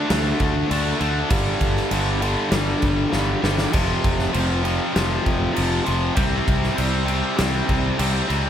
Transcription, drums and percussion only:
0.10 snare, crash
0.40 kick, crash
0.71 crash
1.01 crash
1.30 kick, crash
1.61 kick, crash
1.77 snare
1.91 crash
2.22 crash
2.52 snare, crash
2.82 kick, crash
3.13 snare
3.44 snare
3.58 snare
3.73 kick, crash
4.04 kick, crash
4.19 snare
4.34 crash
4.65 crash
4.96 snare, crash
5.26 kick, crash
5.56 crash
5.86 crash
6.17 kick, crash
6.48 kick, crash
6.63 snare
6.78 crash
7.08 crash
7.38 snare, crash
7.69 kick, crash
7.99 crash
8.30 crash

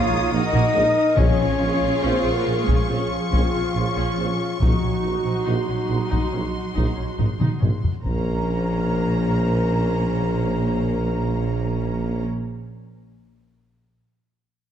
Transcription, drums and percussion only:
1.18 taiko
2.69 taiko
3.33 taiko
4.62 taiko
6.13 taiko
6.77 taiko
7.19 taiko low-mid
7.41 taiko mid
7.62 taiko low-mid
7.84 taiko low
8.05 taiko

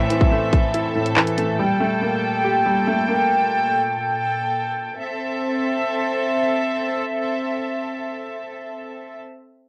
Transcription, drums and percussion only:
0.10 closed hi-hat
0.21 kick
0.53 kick, closed hi-hat
0.74 closed hi-hat
1.06 closed hi-hat
1.17 clap
1.27 closed hi-hat
1.38 closed hi-hat

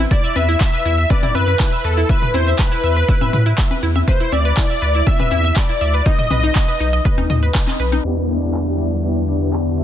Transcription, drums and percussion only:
0.11 kick, closed hi-hat
0.24 closed hi-hat
0.36 open hi-hat, high conga
0.49 closed hi-hat
0.61 kick, clap, closed hi-hat
0.73 closed hi-hat
0.85 open hi-hat
0.98 closed hi-hat
1.10 kick, closed hi-hat, high conga
1.23 closed hi-hat, mid tom, high conga
1.35 open hi-hat, high conga
1.48 closed hi-hat
1.60 kick, clap, closed hi-hat
1.84 open hi-hat
1.97 closed hi-hat
2.09 kick, closed hi-hat
2.22 closed hi-hat, mid tom
2.34 open hi-hat, high conga
2.47 closed hi-hat
2.59 kick, clap, closed hi-hat
2.71 closed hi-hat
2.84 open hi-hat
2.96 closed hi-hat
3.08 kick, closed hi-hat
3.21 closed hi-hat, high conga
3.33 mid tom, open hi-hat
3.46 closed hi-hat
3.58 kick, clap, closed hi-hat
3.71 high conga
3.83 open hi-hat
3.96 closed hi-hat, high conga
4.08 kick, closed hi-hat
4.20 closed hi-hat
4.32 open hi-hat, high conga
4.45 closed hi-hat
4.57 kick, clap, closed hi-hat
4.70 closed hi-hat
4.82 open hi-hat
4.95 closed hi-hat
5.07 kick, closed hi-hat, high conga
5.19 closed hi-hat, mid tom, high conga
5.31 open hi-hat, high conga
5.44 closed hi-hat
5.56 kick, clap, closed hi-hat
5.81 open hi-hat
5.94 closed hi-hat
6.06 kick, closed hi-hat
6.19 closed hi-hat, mid tom
6.31 mid tom, open hi-hat, high conga
6.43 closed hi-hat
6.55 kick, clap, closed hi-hat
6.68 closed hi-hat
6.80 open hi-hat
6.93 closed hi-hat
7.05 kick, closed hi-hat
7.18 closed hi-hat, high conga
7.30 mid tom, open hi-hat
7.43 closed hi-hat
7.55 kick, clap, closed hi-hat
7.67 clap, closed hi-hat, high conga
7.80 open hi-hat
7.92 closed hi-hat, high conga
8.04 closed hi-hat
8.17 closed hi-hat
8.29 closed hi-hat
8.42 closed hi-hat
8.54 clap, closed hi-hat
8.67 closed hi-hat
8.79 closed hi-hat
8.92 closed hi-hat
9.04 closed hi-hat
9.16 closed hi-hat
9.28 closed hi-hat
9.41 closed hi-hat
9.53 clap, closed hi-hat
9.66 closed hi-hat
9.78 closed hi-hat

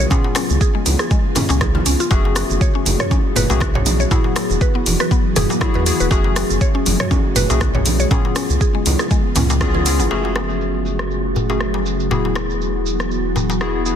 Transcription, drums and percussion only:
0.10 kick, darbuka tek, darbuka dum, shaker
0.24 darbuka ka
0.35 cross-stick, open hi-hat, darbuka tek, shaker
0.50 high conga, shaker
0.61 kick, shaker
0.86 open hi-hat, low conga, shaker
0.99 cross-stick, shaker
1.11 kick, high conga, shaker
1.35 mid tom, open hi-hat, darbuka tek, high conga, darbuka dum, shaker
1.49 darbuka ka, shaker
1.61 kick, cross-stick, low conga, shaker
1.75 high conga, low conga
1.86 open hi-hat, shaker
2.00 shaker
2.11 kick, darbuka tek, shaker
2.25 darbuka ka
2.36 cross-stick, open hi-hat, darbuka tek, shaker
2.50 high conga, shaker
2.61 kick, shaker
2.86 open hi-hat, low conga, shaker
3.00 cross-stick, mid tom, shaker
3.11 kick, low conga, shaker
3.36 open hi-hat, high conga, darbuka dum, shaker
3.50 darbuka tek, shaker
3.60 kick, cross-stick, high conga, shaker
3.75 mid tom, darbuka tek
3.86 open hi-hat, low conga, shaker
4.00 shaker
4.11 kick, darbuka tek, darbuka dum, shaker
4.24 darbuka ka
4.36 cross-stick, open hi-hat, darbuka tek, shaker
4.50 high conga, shaker
4.61 kick, shaker
4.86 open hi-hat, low conga, shaker
5.00 cross-stick, shaker
5.11 kick, high conga, shaker
5.36 mid tom, open hi-hat, high conga, darbuka tek, darbuka dum, shaker
5.50 darbuka ka, shaker
5.61 kick, cross-stick, low conga, shaker
5.74 high conga, low conga
5.86 open hi-hat, shaker
6.00 shaker
6.11 kick, darbuka tek, shaker
6.24 darbuka ka
6.36 cross-stick, open hi-hat, darbuka tek, shaker
6.50 high conga, shaker
6.61 kick, shaker
6.86 open hi-hat, low conga, shaker
7.00 cross-stick, mid tom, shaker
7.11 kick, low conga, shaker
7.36 open hi-hat, high conga, darbuka dum, shaker
7.50 darbuka tek, shaker
7.61 kick, cross-stick, high conga, shaker
7.75 mid tom, darbuka tek
7.86 open hi-hat, low conga, shaker
8.00 shaker
8.11 kick, darbuka ka, darbuka tek, darbuka dum, shaker
8.25 darbuka ka
8.36 cross-stick, open hi-hat, darbuka tek, shaker
8.50 high conga, shaker
8.61 kick, shaker
8.86 open hi-hat, low conga, shaker
8.99 cross-stick, shaker
9.11 kick, high conga, shaker
9.36 mid tom, open hi-hat, darbuka tek, high conga, darbuka dum, shaker
9.50 darbuka ka, shaker
9.61 kick, cross-stick, low conga, shaker
9.74 high conga, low conga
9.86 open hi-hat, darbuka tek, shaker
9.99 low conga, shaker
10.11 crash, darbuka tek, shaker
10.25 darbuka ka
10.36 cross-stick, darbuka tek, shaker
10.50 shaker
10.61 shaker
10.86 shaker
10.99 cross-stick, shaker
11.11 shaker
11.36 darbuka dum, shaker
11.49 darbuka tek, shaker
11.61 cross-stick, shaker
11.74 darbuka tek
11.86 shaker
12.00 shaker
12.11 darbuka tek, darbuka dum, shaker
12.25 darbuka ka
12.35 cross-stick, darbuka tek, shaker
12.50 shaker
12.61 shaker
12.86 shaker
13.00 cross-stick, shaker
13.11 shaker
13.36 darbuka tek, darbuka dum, shaker
13.50 darbuka ka, shaker
13.61 cross-stick, shaker
13.86 shaker

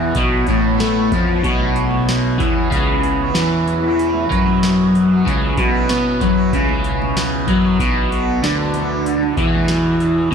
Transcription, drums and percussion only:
0.15 kick, open hi-hat
0.47 kick, open hi-hat
0.80 snare, open hi-hat
1.11 kick, open hi-hat, low conga
1.44 kick, open hi-hat
1.59 high conga
1.76 open hi-hat
1.91 high conga
2.09 snare, open hi-hat
2.40 kick, open hi-hat, low conga
2.72 kick, open hi-hat
3.03 open hi-hat
3.35 snare, open hi-hat
3.66 open hi-hat, low conga
3.99 open hi-hat
4.14 high conga
4.31 kick, open hi-hat
4.47 high conga
4.63 snare, open hi-hat
4.94 open hi-hat, low conga
5.26 kick, open hi-hat
5.42 high conga
5.57 kick, open hi-hat
5.89 snare, open hi-hat, low conga
6.21 kick, open hi-hat, low conga
6.53 kick, open hi-hat
6.69 high conga
6.84 open hi-hat
7.02 high conga
7.17 snare, open hi-hat
7.48 kick, open hi-hat
7.79 kick, open hi-hat
8.12 open hi-hat
8.44 snare, open hi-hat
8.74 open hi-hat, low conga
9.06 open hi-hat
9.23 high conga
9.37 kick, open hi-hat
9.55 high conga
9.68 snare, open hi-hat
10.00 open hi-hat, low conga

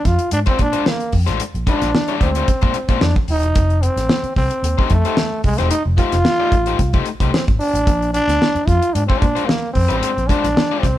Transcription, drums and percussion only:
0.05 kick, snare, closed hi-hat
0.19 closed hi-hat
0.31 closed hi-hat
0.46 kick, closed hi-hat
0.59 kick, closed hi-hat
0.73 closed hi-hat
0.86 snare
1.00 closed hi-hat
1.12 kick, open hi-hat
1.27 snare, closed hi-hat
1.40 closed hi-hat
1.55 closed hi-hat
1.67 kick, closed hi-hat
1.82 snare, closed hi-hat
1.95 snare
2.08 closed hi-hat
2.21 kick, closed hi-hat
2.35 closed hi-hat
2.48 kick, closed hi-hat
2.62 kick, closed hi-hat
2.74 closed hi-hat
2.89 kick, closed hi-hat
3.01 snare
3.16 kick
3.28 open hi-hat
3.43 closed hi-hat
3.55 kick, closed hi-hat
3.70 closed hi-hat
3.83 closed hi-hat
3.97 snare, closed hi-hat
4.09 snare
4.24 closed hi-hat
4.36 kick, snare, open hi-hat
4.51 closed hi-hat
4.64 closed hi-hat
4.79 kick
4.90 kick, closed hi-hat
5.05 closed hi-hat
5.17 snare
5.44 kick, open hi-hat
5.58 snare, closed hi-hat
5.71 closed hi-hat
5.98 kick, closed hi-hat
6.12 snare, closed hi-hat
6.25 snare
6.52 kick, closed hi-hat
6.66 closed hi-hat
6.79 kick, closed hi-hat
6.93 kick, closed hi-hat
7.05 closed hi-hat
7.20 kick, closed hi-hat
7.34 snare
7.48 kick, closed hi-hat
7.60 open hi-hat
7.75 closed hi-hat
7.87 kick, closed hi-hat
8.02 closed hi-hat
8.14 closed hi-hat
8.29 snare, closed hi-hat
8.42 snare
8.56 closed hi-hat
8.68 kick, snare, closed hi-hat
8.82 closed hi-hat
8.95 closed hi-hat
9.10 kick
9.22 kick, closed hi-hat
9.36 closed hi-hat
9.49 snare
9.75 kick, open hi-hat
9.90 closed hi-hat
10.03 closed hi-hat
10.18 closed hi-hat
10.29 kick, closed hi-hat
10.44 snare, closed hi-hat
10.57 snare
10.83 kick, snare, closed hi-hat

